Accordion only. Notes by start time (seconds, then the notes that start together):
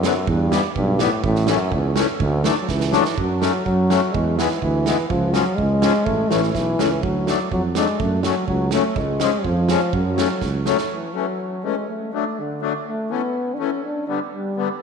0.02 D3 F#3 B3
0.50 E3 G3 B3
0.98 E3 G3 B3
1.47 E3 A3 C#4
1.95 E3 A3 C#4
2.43 F#3 A3 D4
2.92 F#3 A3 D4
3.40 F#3 A3 C#4
3.90 F#3 A3 C#4
4.37 E3 G#3 B3
4.86 E3 G#3 B3
5.33 F3 G#3 C#4
5.81 F3 G#3 C#4
6.30 E3 A3 C#4
6.77 E3 A3 C#4
7.27 F#3 A3 D4
7.76 F#3 A3 D4
8.24 F#3 A3 C#4
8.72 F#3 A3 C#4
9.19 F3 G#3 C#4
9.69 F3 G#3 C#4
10.16 F#3 A3 C#4
10.66 F#3 A3 C#4
11.15 E3 A3 C#4
11.64 E3 A3 C#4
12.13 F#3 A3 D4
12.61 F#3 A3 D4
13.10 E3 A3 C#4
13.59 E3 A3 C#4
14.08 D3 G3 B3
14.57 D3 G3 B3